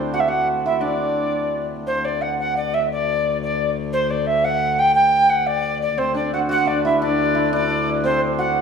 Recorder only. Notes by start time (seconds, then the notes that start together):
0.14 F#5
0.20 E5
0.28 F#5
0.66 E5
0.81 D5
1.87 C5
2.05 D5
2.21 F#5
2.39 F#5
2.57 D5
2.74 E5
2.91 D5
3.42 D5
3.93 C5
4.10 D5
4.27 E5
4.44 F#5
4.79 G5
4.95 G5
5.30 F#5
5.47 D5
5.82 D5
5.98 C5
6.15 D5
6.34 F#5
6.51 F#5
6.67 D5
6.85 E5
7.02 D5
7.54 D5
8.05 C5
8.39 F#5